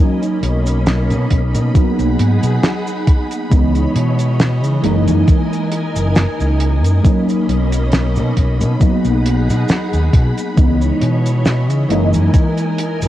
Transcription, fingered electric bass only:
0.43 1.12 B1 loud
1.11 1.24 B2 medium
1.31 1.56 B1 medium
1.55 1.68 B2 medium
1.99 2.12 B1 medium
2.19 2.35 G#2 medium
2.43 2.56 B2 medium
3.52 3.82 C#2 loud
3.95 4.64 B2 loud
4.64 4.77 C#3 medium
4.84 5.09 F#1 medium
5.08 5.21 F#2 medium
5.96 6.24 F#1 medium
6.40 6.84 C#2 medium
6.84 6.98 F#2 loud
7.49 8.18 B1 loud
8.17 8.30 B2 medium
8.37 8.62 B1 medium
8.61 8.74 B2 medium
9.05 9.51 B1 medium
9.49 9.62 B2 medium
9.93 10.06 D#2 medium
10.13 10.29 B2 medium
10.57 10.88 C#2 loud
11.02 11.70 B2 loud
11.70 11.83 C#3 loud
11.90 12.15 F#1 medium
12.14 12.27 F#2 medium
13.02 13.08 F#1 medium

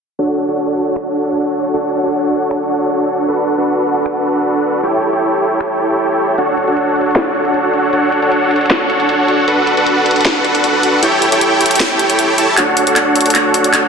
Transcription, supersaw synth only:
0.19 0.46 D4 medium
0.19 0.46 F#4 medium
0.19 0.46 A4 medium
0.19 0.46 C#5 medium
0.19 0.46 F#5 medium
0.48 1.71 D4 medium
0.48 1.71 F#4 medium
0.48 1.71 A4 medium
0.48 1.71 C#5 medium
0.48 1.71 F#5 medium
1.74 2.01 D4 medium
1.74 2.01 F#4 medium
1.74 2.01 A4 medium
1.74 2.01 C#5 medium
1.74 2.01 F#5 loud
2.03 3.26 D4 medium
2.03 3.26 F#4 medium
2.03 3.26 A4 medium
2.03 3.26 C#5 medium
2.03 3.26 F#5 medium
3.28 3.55 D4 medium
3.28 3.55 F#4 medium
3.28 3.56 A4 medium
3.28 3.55 B4 medium
3.28 3.55 F#5 medium
3.58 4.81 D4 medium
3.58 4.81 F#4 medium
3.58 4.81 A4 medium
3.58 4.81 B4 medium
3.58 4.81 F#5 medium
4.83 5.10 E4 medium
4.83 5.10 G4 medium
4.83 5.10 A4 medium
4.83 5.10 C#5 medium
4.83 5.10 G5 loud
5.13 6.36 E4 medium
5.13 6.36 G4 medium
5.13 6.36 A4 medium
5.13 6.36 C#5 medium
5.13 6.36 G5 medium
6.38 6.65 D4 medium
6.38 6.65 F#4 medium
6.38 6.65 A4 medium
6.38 6.65 C#5 medium
6.38 6.65 F#5 medium
6.68 7.91 D4 medium
6.68 7.91 F#4 medium
6.68 7.91 A4 medium
6.68 7.91 C#5 medium
6.68 7.91 F#5 medium
7.93 8.20 D4 medium
7.93 8.20 F#4 medium
7.93 8.20 A4 medium
7.93 8.20 C#5 medium
7.93 8.20 F#5 loud
8.22 9.46 D4 medium
8.22 9.46 F#4 medium
8.22 9.46 A4 medium
8.22 9.46 C#5 medium
8.22 9.46 F#5 medium
9.48 9.75 D4 medium
9.48 9.75 F#4 medium
9.48 9.75 A4 medium
9.48 9.75 B4 medium
9.48 9.75 F#5 medium
9.77 11.00 D4 medium
9.77 11.00 F#4 medium
9.77 11.00 A4 medium
9.77 11.00 B4 medium
9.77 11.00 F#5 medium
11.03 11.30 E4 medium
11.03 11.30 G4 medium
11.03 11.30 A4 medium
11.03 11.30 C#5 medium
11.03 11.30 G5 loud
11.32 12.36 E4 medium
11.32 12.36 G4 medium
11.32 12.36 A4 medium
11.32 12.36 C#5 medium
11.32 12.36 G5 medium
12.38 12.55 E4 medium
12.38 12.55 G4 medium
12.38 12.55 A4 medium
12.38 12.55 C#5 medium
12.38 12.55 A5 medium
12.57 12.85 D4 medium
12.57 12.85 F#4 medium
12.57 12.85 A4 medium
12.57 12.85 C#5 medium
12.57 12.85 F#5 medium
12.87 13.88 D4 medium
12.87 13.88 F#4 medium
12.87 13.88 A4 medium
12.87 13.88 C#5 medium
12.87 13.88 F#5 medium

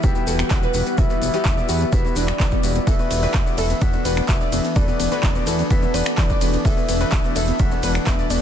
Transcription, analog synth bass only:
0.04 0.20 E1 loud
0.27 0.43 E1 medium
0.51 0.67 E1 medium
0.74 0.83 E1 medium
0.98 1.14 E1 medium
1.22 1.30 E1 medium
1.45 1.61 E1 loud
1.69 1.85 E2 medium
1.93 2.09 E1 medium
2.16 2.32 E1 loud
2.40 2.56 E1 medium
2.63 2.79 E1 medium
2.87 2.95 E1 loud
3.11 3.27 E1 medium
3.34 3.42 E1 loud
3.58 3.74 E1 medium
3.82 3.98 E1 loud
4.05 4.21 E1 loud
4.29 4.45 E1 medium
4.52 4.61 E1 medium
4.76 4.92 E1 medium
5.00 5.08 E1 medium
5.23 5.39 E1 loud
5.47 5.63 E2 medium
5.71 5.87 E1 medium
5.94 6.02 E1 medium
6.18 6.34 E2 medium
6.41 6.57 E1 medium
6.65 6.73 E1 loud
6.89 7.05 E1 medium
7.12 7.20 E1 loud
7.36 7.52 E1 medium
7.60 7.76 E1 loud
7.83 7.99 E1 loud
8.07 8.23 E1 medium
8.30 8.38 E1 medium

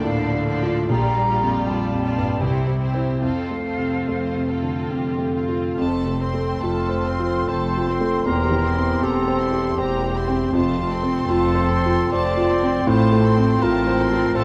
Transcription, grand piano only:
0.00 0.85 D2 soft
0.00 0.05 A2 soft
0.00 0.92 A#2 soft
0.00 0.34 A3 soft
0.05 0.50 A2 soft
0.34 0.79 A3 soft
0.63 0.90 F4 soft
0.89 2.38 A#1 soft
1.17 1.57 G3 soft
1.41 1.82 F2 soft
1.67 2.07 G3 soft
1.91 2.31 F2 soft
2.17 2.42 G2 soft
2.41 3.19 C2 soft
2.67 3.11 G3 soft
2.94 3.19 E4 soft
2.94 3.20 C5 soft
3.21 5.74 F2 soft
3.51 3.97 A3 soft
3.78 4.25 C3 soft
4.09 4.53 A3 soft
4.36 4.80 C3 soft
4.63 4.91 D3 soft
4.91 5.38 C3 soft
5.18 5.67 A3 soft
5.49 5.78 F4 soft
5.78 8.22 F2 soft
6.06 6.50 C3 soft
6.34 6.78 A3 soft
6.63 7.09 F4 soft
6.89 7.37 C5 soft
7.20 7.65 F4 soft
7.49 7.91 C5 soft
7.77 8.17 F4 soft
8.01 8.26 A3 soft
8.26 10.49 E2 soft
8.51 8.92 E3 soft
8.75 9.17 C4 soft
9.02 9.43 G4 soft
9.28 9.68 C5 soft
9.52 9.93 G4 soft
9.78 10.19 C5 soft
10.02 10.43 G4 soft
10.28 10.53 C4 soft
10.52 12.82 F2 soft
10.77 11.18 C3 soft
11.03 11.44 C4 soft
11.30 11.73 F4 soft
11.55 12.00 C5 soft
11.86 12.28 F4 soft
12.12 12.53 C5 soft
12.37 12.77 F4 soft
12.63 12.87 C4 soft
12.87 14.44 A2 medium
13.12 13.52 A3 soft
13.38 13.77 C4 soft
13.63 14.01 F4 medium
13.87 14.25 C5 soft
14.13 14.44 F4 soft
14.35 14.44 C5 soft

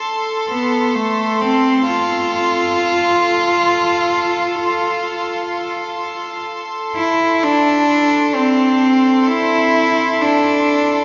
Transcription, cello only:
0.48 0.97 B3 medium
0.96 1.43 A3 medium
1.42 1.84 C4 medium
1.85 6.43 F4 loud
6.96 7.45 E4 medium
7.44 8.37 D4 loud
8.36 9.29 C4 medium
9.27 10.23 E4 loud
10.21 11.04 D4 medium

